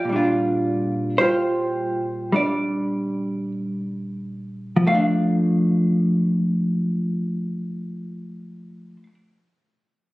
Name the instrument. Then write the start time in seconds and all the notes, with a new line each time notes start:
hollow-body jazz guitar
Already playing: F4 G4 D5
0.05 A#2
0.09 G3 D4
0.16 F4
1.18 F4 G4 C5
2.32 G3 D4 D5
4.76 F3
4.87 A3 F5
4.95 D4